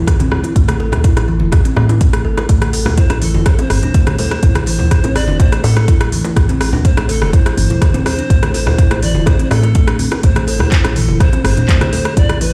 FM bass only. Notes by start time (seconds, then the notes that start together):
0.20 A1
0.56 A1
0.93 D2
1.17 A1
1.41 E1
1.77 A2
2.25 G1
2.38 A1
2.49 A1
2.86 D2
3.10 A1
3.34 E1
3.70 G1
4.07 A1
4.43 A1
4.79 D2
5.04 A1
5.28 E1
5.64 A2
6.36 A1
6.73 D2
6.97 A1
7.22 E1
7.57 G1
7.94 A1
8.30 A1
8.67 D2
8.91 A1
9.15 E1
9.51 A2
10.24 A1
10.60 D2
10.84 A1
11.09 E1
11.44 G1
11.81 A1
12.17 A1